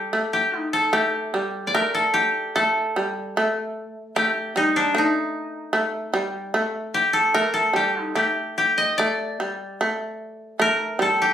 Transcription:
Already playing: G3 G4 A4
0.13 A3
0.33 G4
0.58 D#4
0.73 A4
0.93 A3 G4
1.34 G3
1.67 D5
1.74 A3 A#4
1.94 A4
2.14 G4
2.56 A3 A4
2.96 G3
3.37 A3
4.16 A3 G4
4.56 G3 D#4
4.76 D4
4.95 A3 D#4
5.73 A3
6.14 G3
6.54 A3
6.94 G4
7.13 A4
7.34 A3 A#4
7.54 A4
7.73 G3 G4
8.01 D#4
8.15 A3 G4
8.58 G4
8.78 D#5
8.98 A3 D5
9.40 G3
9.81 A3
10.59 A3 A#4
10.99 G3 A4
11.22 G4

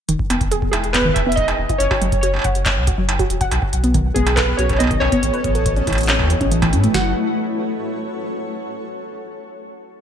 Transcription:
0.09 E1 D#3, closed hi-hat
0.19 kick
0.30 E1 B3, closed hi-hat, struck metal
0.41 kick, closed hi-hat
0.52 G#4, closed hi-hat
0.62 kick
0.71 E1 E4 G#4, closed hi-hat, struck metal
0.84 closed hi-hat
0.93 B3 B4, kick, clap, closed hi-hat
1.02 D#3, kick
1.09 kick
1.14 E1 E5, kick, closed hi-hat, struck metal
1.27 B3 E5
1.32 D#5, closed hi-hat
1.37 kick, closed hi-hat
1.48 G#4, closed hi-hat, struck metal
1.59 E1
1.69 E4, kick, closed hi-hat
1.78 F#1 C#5, closed hi-hat
1.91 F#4, kick, struck metal
2.02 F#1 F#3, closed hi-hat
2.12 kick, closed hi-hat
2.21 F#4 C#5, closed hi-hat
2.34 struck metal
2.36 struck metal
2.39 struck metal
2.42 F#1 F#5, kick, closed hi-hat, struck metal
2.55 closed hi-hat
2.66 C#5, kick, clap, closed hi-hat, struck metal
2.77 C#2
2.87 F#4, kick, closed hi-hat
2.98 F#1 F#3
3.09 closed hi-hat, struck metal
3.19 F#4, kick, closed hi-hat
3.30 E1, closed hi-hat
3.41 F#5, kick, closed hi-hat
3.52 B1 B3, closed hi-hat, struck metal
3.62 F#4, kick
3.73 B1, closed hi-hat
3.84 B3 A4, closed hi-hat
3.88 F#4
3.94 D#3, kick, closed hi-hat
4.14 B1 B3 G#4, kick, closed hi-hat
4.27 D#5, closed hi-hat, struck metal
4.36 A4 B4, kick, clap, closed hi-hat
4.57 B1 F#4 C#5, closed hi-hat
4.69 kick, closed hi-hat, struck metal
4.73 struck metal
4.76 B3 D#5, closed hi-hat, struck metal
4.80 struck metal
4.84 struck metal
4.87 D#3, kick, closed hi-hat, struck metal
5.00 B1 C#5, struck metal
5.12 B3, kick, closed hi-hat
5.23 A1 A3, closed hi-hat
5.34 B4, closed hi-hat
5.40 E4, closed hi-hat
5.44 A1, kick
5.55 A4 B4, closed hi-hat
5.66 kick, closed hi-hat
5.76 C#4, closed hi-hat
5.87 A1 E3, kick, closed hi-hat, struck metal
5.90 closed hi-hat, struck metal
5.93 struck metal
5.95 closed hi-hat, struck metal
6.01 closed hi-hat
6.03 closed hi-hat
6.06 C#4, clap, closed hi-hat
6.09 closed hi-hat
6.19 E2, kick, struck metal
6.30 E3, closed hi-hat
6.41 A1 C#4, kick, closed hi-hat
6.52 E3, closed hi-hat
6.62 E3, kick, closed hi-hat, struck metal
6.73 A2 C#4, closed hi-hat
6.84 A3, closed hi-hat
6.94 F#1 F#3 F#4 F#5, snare
7.01 A4
7.07 C#5

